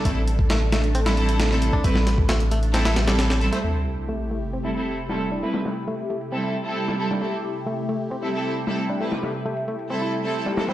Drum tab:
HH |x-x-x-xxxxxxx-x-|x-x-xxxxxxxxxxxx|x-x-x-x-x-x-x-x-|x-x-xxxxx-o-x-x-|
SD |----o-o--o--oo--|-oo-o---oooooo--|-------------o--|-oo----------o-o|
BD |o--o-----------o|o--o------------|----------------|----------------|

HH |x-x-x-x-x-x-x-x-|x-x-xxxxxxo-x-x-|
SD |-------------o--|-oo----------ooo|
BD |----------------|----------------|